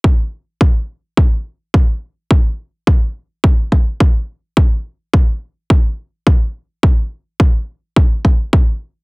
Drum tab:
BD |o-o-o-o-|o-o-ooo-|o-o-o-o-|o-o-ooo-|